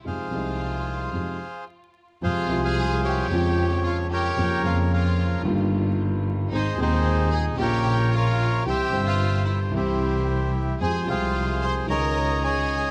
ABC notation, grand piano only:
X:1
M:4/4
L:1/8
Q:1/4=112
K:Fm
V:1 name="Grand piano" clef=bass
[F,,C,F,A,E] [C,,C,F,A,E]3 [F,,C,F,A,E] z3 | [F,,C,F,A,F] [C,,C,F,A,F]3 [F,,D,F,A,F]4 | [F,,D,F,B,F] [F,,D,F,B,F]3 [G,,,G,,E,G,B,F]4 | [A,,,A,,E,A,CA] [E,,,E,,E,A,CA]3 [B,,,B,,D,F,B,F]4 |
[C,,C,=E,G,CG] [G,,,G,,C,G,CG]3 [C,,C,E,G,CG]4 | [F,,F,A,CG] [C,,C,F,A,Cg]3 [D,,D,E,A,DA]4 |]